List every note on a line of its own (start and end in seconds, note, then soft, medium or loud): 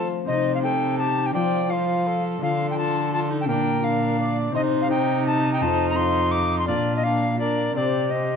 0.00 0.10 F3 medium
0.00 0.29 F3 medium
0.00 0.29 A3 soft
0.00 0.24 C4 soft
0.00 0.30 F4 soft
0.25 1.36 C3 medium
0.25 0.59 C4 soft
0.25 0.60 D#4 soft
0.25 0.62 D#4 medium
0.25 0.61 G4 soft
0.25 0.61 C5 medium
0.25 0.52 D#5 medium
0.55 0.59 F5 medium
0.60 1.30 C4 soft
0.60 1.35 D#4 soft
0.60 1.33 D#4 soft
0.60 1.35 G4 soft
0.60 1.02 A4 medium
0.60 0.98 G5 medium
0.98 1.34 G4 medium
0.98 1.28 A5 medium
1.26 1.33 G5 medium
1.31 2.42 F3 medium
1.31 4.57 F3 soft
1.31 1.65 C4 soft
1.31 1.67 F4 soft
1.31 1.68 A4 soft
1.31 1.73 D5 medium
1.31 1.71 G5 medium
1.36 1.69 F4 medium
1.66 2.41 C4 soft
1.66 2.38 F4 soft
1.66 2.40 F4 medium
1.66 2.39 A4 soft
1.66 2.24 F5 medium
1.72 2.09 C5 medium
2.07 2.42 A4 medium
2.38 3.50 D3 soft
2.38 2.72 D4 soft
2.38 2.73 F4 soft
2.38 2.77 F4 medium
2.38 2.75 A4 medium
2.42 3.51 D3 medium
2.42 3.47 A4 medium
2.42 2.67 F5 medium
2.70 3.44 D4 soft
2.70 2.77 G5 medium
2.75 3.45 F4 soft
2.75 3.12 F4 medium
2.75 3.49 A4 soft
2.75 3.12 A5 medium
3.13 3.30 F4 medium
3.13 3.19 A5 medium
3.31 3.38 D#4 medium
3.41 3.47 G5 medium
3.45 4.57 A#2 medium
3.45 4.55 A#2 medium
3.45 3.79 D4 soft
3.45 3.83 D4 medium
3.45 3.81 F4 soft
3.45 3.82 A#4 medium
3.45 4.18 A#4 medium
3.45 3.85 G5 loud
3.81 4.55 D4 medium
3.81 4.54 D4 medium
3.81 4.55 F4 soft
3.81 4.56 A#4 medium
3.81 4.37 F5 medium
4.19 4.54 D5 medium
4.51 4.85 C4 soft
4.51 4.86 D#4 medium
4.51 4.90 D#4 medium
4.51 4.87 G4 soft
4.51 4.90 C5 medium
4.51 4.61 D#5 medium
4.55 5.63 C3 medium
4.82 4.90 F5 medium
4.86 5.57 C4 medium
4.86 5.61 D#4 soft
4.86 5.64 D#4 medium
4.86 5.62 G4 medium
4.90 6.64 D#4 medium
4.90 5.25 G5 medium
5.27 5.52 A5 medium
5.53 5.63 G5 medium
5.58 6.69 F2 medium
5.58 5.92 C4 medium
5.58 5.93 F4 soft
5.58 5.95 A4 soft
5.62 6.69 F2 medium
5.62 5.97 F4 medium
5.62 5.88 A5 medium
5.90 6.68 C4 soft
5.90 5.97 A#5 medium
5.94 6.65 F4 soft
5.94 6.70 F4 medium
5.94 6.69 A4 medium
5.94 6.33 C6 medium
6.31 6.58 D6 loud
6.59 6.67 C6 medium
6.65 7.75 A#2 medium
6.65 7.77 A#2 medium
6.65 6.99 D4 soft
6.65 7.03 D4 medium
6.65 7.00 F4 soft
6.65 7.13 F4 medium
6.65 7.02 A#4 soft
6.65 6.94 D5 medium
6.96 7.35 D4 soft
6.96 7.05 D#5 medium
7.02 7.39 D4 medium
7.02 7.36 F4 soft
7.02 7.37 A#4 soft
7.02 7.38 F5 medium
7.36 7.75 D4 soft
7.36 7.75 D4 medium
7.36 7.76 F4 soft
7.36 7.76 A#4 soft
7.36 7.75 D5 medium
7.40 7.79 A#4 medium
7.73 8.36 C3 medium
7.73 8.36 C3 soft
7.73 8.07 C4 soft
7.73 8.11 C4 soft
7.73 8.08 G4 soft
7.73 8.12 D5 medium
7.78 8.36 G4 medium
8.08 8.36 C4 soft
8.08 8.36 G4 soft
8.08 8.36 D#5 medium